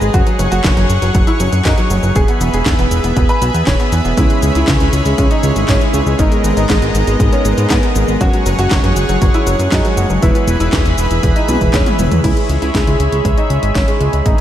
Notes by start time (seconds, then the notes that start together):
Already playing: G#4 B4 D#5 A#5
0.01 G#1 G#3, cabasa
0.14 F#1 F#4 C#5 F#5 C#6, kick, closed hi-hat, cabasa
0.27 F#3, closed hi-hat, cabasa
0.39 F#1 F#3, closed hi-hat, cabasa
0.52 F#1 F#4, closed hi-hat, cabasa
0.64 F#1 F#3, kick, snare, clap, closed hi-hat, cabasa
0.77 F#1 F#3, closed hi-hat, cabasa
0.89 F#1, closed hi-hat, cabasa
1.02 F#1 F#3, closed hi-hat, cabasa
1.15 F#1 F#3, kick, closed hi-hat, cabasa
1.27 E4, closed hi-hat, cabasa
1.40 F#1 F#3, closed hi-hat, cabasa
1.52 F#2 F#3, closed hi-hat, cabasa
1.65 F#2 D#4, kick, snare, clap, closed hi-hat, cabasa
1.78 F#3, closed hi-hat, cabasa
1.90 F#1 F#3, closed hi-hat, cabasa
2.03 F#1 F#3, cabasa
2.16 E1 G#4 B4 E5 B5, kick, closed hi-hat, cabasa
2.28 B3, closed hi-hat, cabasa
2.41 E1 B3, closed hi-hat, cabasa
2.53 E1 G#4, closed hi-hat, cabasa
2.66 E1 B3, kick, snare, clap, closed hi-hat, cabasa
2.79 E1 B3, closed hi-hat, cabasa
2.91 E1, closed hi-hat, cabasa
3.04 E1 B3, closed hi-hat, cabasa
3.16 E1 B3, kick, closed hi-hat, cabasa
3.29 B4, closed hi-hat, cabasa
3.42 B1 B3, closed hi-hat, cabasa
3.54 E2 B3, closed hi-hat, cabasa
3.67 E1 C#5, kick, snare, clap, closed hi-hat, cabasa
3.80 B3, closed hi-hat, cabasa
3.92 E2 B3, closed hi-hat, cabasa
4.05 E1 B3, cabasa
4.17 C#2 C#3 G#3 C#4 E4 B4 C#5, kick, closed hi-hat, cabasa
4.30 G#3, closed hi-hat, cabasa
4.43 C#2 G#3, closed hi-hat, cabasa
4.55 C#2 C#3 G#3 C#4 E4 B4, closed hi-hat, cabasa
4.68 C#2 G#3, kick, snare, clap, closed hi-hat, cabasa
4.80 C#2 G#3, closed hi-hat, cabasa
4.93 C#2, closed hi-hat, cabasa
5.06 C#2 G#3, closed hi-hat, cabasa
5.18 C#2 G#3, kick, closed hi-hat, cabasa
5.31 D#4, closed hi-hat, cabasa
5.43 C#2 G#3, closed hi-hat, cabasa
5.56 G#1 G#3, closed hi-hat, cabasa
5.69 G#1 C#4, kick, snare, clap, closed hi-hat, cabasa
5.81 G#3, closed hi-hat, cabasa
5.94 C#2 G#3, closed hi-hat, cabasa
6.06 C#2 G#3, cabasa
6.19 G#1 G#2 G#3 B3 D#4 A#4 D#5 A#5, kick, closed hi-hat, cabasa
6.32 G#3, closed hi-hat, cabasa
6.44 G#1 G#3, closed hi-hat, cabasa
6.57 G#1 G#2 G#3 B3 D#4 A#4, closed hi-hat, cabasa
6.69 G#1 G#3, kick, snare, clap, closed hi-hat, cabasa
6.82 G#1 G#3, closed hi-hat, cabasa
6.95 G#1, closed hi-hat, cabasa
7.07 G#1 G#3, closed hi-hat, cabasa
7.20 G#1 G#3, kick, closed hi-hat, cabasa
7.33 C#4, closed hi-hat, cabasa
7.45 G#1 G#3, closed hi-hat, cabasa
7.58 G#2 G#3, closed hi-hat, cabasa
7.70 G#2 B3, kick, snare, clap, closed hi-hat, cabasa
7.83 G#3, closed hi-hat, cabasa
7.96 G#1 G#3, closed hi-hat, cabasa
8.08 G#1 G#3, cabasa
8.21 F#1 G#3 C#4 F#4 G#4 C#5 F#5 C#6, kick, closed hi-hat, cabasa
8.33 F#3, closed hi-hat, cabasa
8.46 F#1 F#3, closed hi-hat, cabasa
8.58 F#1 G#3 C#4 F#4 C#5, closed hi-hat, cabasa
8.71 F#1 F#3, kick, snare, clap, closed hi-hat, cabasa
8.84 F#1 F#3, closed hi-hat, cabasa
8.96 F#1, closed hi-hat, cabasa
9.09 F#1 F#3, closed hi-hat, cabasa
9.22 F#1 F#3, kick, closed hi-hat, cabasa
9.34 E4, closed hi-hat, cabasa
9.47 F#1 F#3, closed hi-hat, cabasa
9.59 F#2 F#3, closed hi-hat, cabasa
9.72 F#2 D#4, kick, snare, clap, closed hi-hat, cabasa
9.85 F#3, closed hi-hat, cabasa
9.97 F#1 F#3, closed hi-hat, cabasa
10.10 F#1 F#3, cabasa
10.22 E1 G#3 B3 E4 G#4 B4 E5 B5, kick, closed hi-hat, cabasa
10.35 E3, closed hi-hat, cabasa
10.47 E1 E3, closed hi-hat, cabasa
10.60 E1 G#3 B3 E4 B4, closed hi-hat, cabasa
10.73 E1 E3, kick, snare, clap, closed hi-hat, cabasa
10.85 E1 E3, closed hi-hat, cabasa
10.98 E1, closed hi-hat, cabasa
11.11 E1 E3, closed hi-hat, cabasa
11.23 E1 E3, kick, closed hi-hat, cabasa
11.36 D#4, closed hi-hat, cabasa
11.48 B1 E3 G#3 B3 E4 B4, closed hi-hat, high tom, cabasa
11.61 E1 E3, kick, closed hi-hat, cabasa
11.74 E1 G#3 B3 C#4 E4 C#5, kick, snare, clap, closed hi-hat, mid tom, cabasa
11.86 E3, closed hi-hat, mid tom, cabasa
11.99 E1 E3, closed hi-hat, mid tom, cabasa
12.11 E2 E3, closed hi-hat, mid tom, cabasa
12.24 C#2 E4 G#4 C#5 E5 B5, kick, closed hi-hat, crash
12.37 G#3, closed hi-hat
12.49 C#2 G#3, closed hi-hat
12.62 C#2 E4, closed hi-hat
12.74 C#2 G#3, kick, snare, closed hi-hat
12.87 C#2 G#3, closed hi-hat
13.00 C#2, closed hi-hat
13.12 C#2 G#3, closed hi-hat
13.25 C#2 G#3, kick, closed hi-hat
13.38 D#4, closed hi-hat
13.50 C#2 G#3, closed hi-hat
13.63 G#1 G#3, closed hi-hat
13.75 G#1 C#4, kick, snare, closed hi-hat
13.88 G#3, closed hi-hat
14.00 C#2 G#3, closed hi-hat
14.13 C#2 G#3, closed hi-hat
14.25 G#1 D#4 G#4 B4 D#5 A#5, kick, closed hi-hat